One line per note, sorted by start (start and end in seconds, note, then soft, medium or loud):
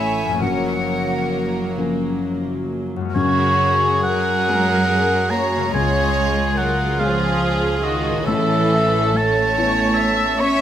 0.00 0.37 A1 medium
0.00 0.36 A2 medium
0.00 0.37 A2 medium
0.00 0.38 A3 soft
0.00 0.38 A3 medium
0.00 0.38 A3 soft
0.00 0.32 C#4 soft
0.00 0.38 C#4 soft
0.00 0.41 E4 medium
0.00 0.38 B4 soft
0.00 0.42 B4 soft
0.00 0.41 C#5 medium
0.00 0.41 E5 medium
0.00 0.41 G#5 medium
0.24 2.95 F#2 soft
0.28 3.12 F3 soft
0.33 3.04 C#4 soft
0.37 2.89 F#3 medium
0.37 2.93 A#3 medium
0.37 3.08 A#4 soft
0.37 2.45 A#4 medium
0.37 1.74 C#5 medium
0.37 1.77 F#5 medium
0.42 2.89 F#1 medium
0.42 1.73 F#2 medium
0.42 2.89 F#2 medium
1.78 3.11 F3 soft
1.78 3.11 C#4 soft
1.78 3.11 A#4 soft
2.96 5.68 F#2 medium
3.01 5.60 G#3 medium
3.05 6.95 C#4 medium
3.10 5.75 A#4 medium
3.15 4.44 F#2 medium
3.15 5.71 F#2 medium
3.15 4.01 C#3 medium
3.15 4.01 F#4 medium
3.15 5.70 G#4 medium
3.15 4.01 C#5 loud
4.03 5.32 F#3 medium
4.03 5.29 A#4 medium
4.03 5.32 F#5 loud
4.48 5.70 G#3 soft
4.48 5.70 C#4 soft
4.48 4.87 A#4 medium
4.48 5.71 A#4 medium
4.89 5.32 G#4 medium
5.30 5.74 A#3 medium
5.30 5.74 F#4 medium
5.30 5.74 C#5 medium
5.30 5.73 A#5 medium
5.56 8.22 C#3 medium
5.61 8.24 G#3 medium
5.66 8.26 G#4 medium
5.70 6.97 G#4 medium
5.70 8.21 C#5 medium
5.74 8.23 C#2 medium
5.74 6.96 C#2 medium
5.74 6.58 G#3 medium
5.74 8.23 F4 medium
5.74 6.57 C#5 medium
5.74 6.59 G#5 medium
6.57 7.00 F#3 medium
6.57 6.99 A#4 medium
6.57 7.01 F#5 medium
6.99 7.84 F3 medium
6.99 8.23 G#3 medium
6.99 8.27 G#4 medium
6.99 7.84 G#4 medium
6.99 8.24 C#5 soft
6.99 7.85 F5 medium
6.99 8.23 F5 medium
7.84 8.26 D#3 medium
7.84 8.27 F#4 medium
7.84 8.26 D#5 medium
8.09 10.61 A2 medium
8.18 10.61 E4 medium
8.22 10.61 C#4 medium
8.22 10.61 C#5 soft
8.27 10.61 A1 medium
8.27 9.53 A1 medium
8.27 9.15 E3 medium
8.27 9.57 A4 medium
8.27 9.15 A4 medium
8.27 9.18 E5 loud
9.16 10.40 A3 medium
9.16 10.41 C#5 medium
9.16 10.42 A5 loud
9.57 10.61 B3 soft
9.57 10.61 E4 medium
9.57 9.97 C#5 medium
9.57 10.61 C#5 medium
9.98 10.40 E5 medium
10.39 10.61 C#4 medium
10.39 10.61 C#5 medium
10.39 10.61 E5 medium
10.39 10.61 C#6 medium